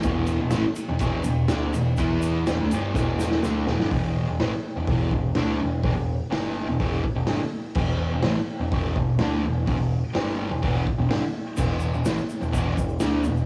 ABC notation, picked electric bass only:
X:1
M:4/4
L:1/16
Q:1/4=125
K:Em
V:1 name="Picked electric bass" clef=bass
E,,,3 E,,, A,,, z2 E,,, E,,,2 E,,,2 D,,2 E,,,2 | E,,4 E,,, D,, G,,,2 E,,,4 D,,2 E,,, G,,, | E,,,3 E,,, A,,, z2 E,,, E,,,2 E,,,2 D,,2 E,,,2 | E,,, E,,,2 z G,,,3 E,,, E,,,2 z E,,, G,,, z3 |
E,,,3 E,,, A,,, z2 E,,, E,,,2 E,,,2 D,,2 E,,,2 | E,,, E,,,2 z G,,,3 E,,, E,,,2 z E,,, G,,, z3 | E,,,3 E,,, A,,, z2 E,,, E,,,2 E,,,2 D,,2 E,,,2 |]